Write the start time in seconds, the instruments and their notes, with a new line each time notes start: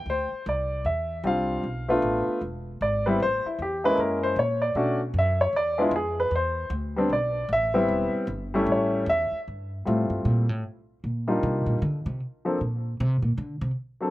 Already playing: grand piano G5
0.06 upright bass D2
0.10 grand piano C5
0.32 muted upright bass stroke
0.46 upright bass C2, grand piano D5
0.85 upright bass E2, grand piano E5
1.24 upright bass C2, grand piano G3 C4 D4 F4 F5
1.63 upright bass B1
1.88 grand piano A3 B3 D4 F4
2.02 upright bass A1
2.28 muted upright bass stroke
2.41 upright bass E1
2.81 upright bass G#1, grand piano D5
3.06 grand piano G3 B3 C4 E4 B4
3.20 upright bass A1, grand piano C5
3.45 grand piano E4, muted upright bass stroke
3.59 upright bass E2, grand piano G4
3.84 grand piano G#3 A#3 C#4 E4 B4
3.95 upright bass F#2, grand piano A4
4.00 grand piano A#4
4.23 grand piano C5
4.36 upright bass A#2, grand piano C#5
4.62 grand piano D5
4.75 upright bass B2, grand piano A3 C#4 D4 F#4
5.14 upright bass F#2
5.19 grand piano E5
5.41 grand piano C#5
5.53 upright bass E2, grand piano D5
5.78 grand piano G#3 B3 D4 E4 F4
5.91 upright bass F2
5.96 grand piano G#4
6.20 grand piano B4
6.31 upright bass E2
6.36 grand piano C5
6.70 upright bass D2
6.96 grand piano G3 B3 C4 D4
7.09 upright bass B1, grand piano D5
7.49 upright bass A1
7.53 grand piano E5
7.74 grand piano G3 B3 C4 E4
7.88 upright bass E1
8.13 muted upright bass stroke
8.27 upright bass G1
8.54 grand piano G3 A3 C#4 E4
8.66 upright bass A1
8.72 grand piano C#5
9.06 upright bass E2, grand piano E5
9.31 muted upright bass stroke
9.48 upright bass G2
9.85 upright bass A2, grand piano G3 A3 C4 E4 F4
10.10 upright bass G2
10.25 upright bass A#2
10.49 upright bass A2
11.04 upright bass A#2
11.28 grand piano G3 A#3 D4 D#4 F4
11.43 upright bass C3
11.66 upright bass A#2
11.82 upright bass D3
12.06 upright bass C3
12.45 grand piano F3 A#3 C4 D4 A4
12.61 upright bass A#2
13.00 upright bass C3
13.22 upright bass A#2
13.38 upright bass D3
13.61 upright bass C3
14.01 grand piano F#3 A#3 C4 D4 A4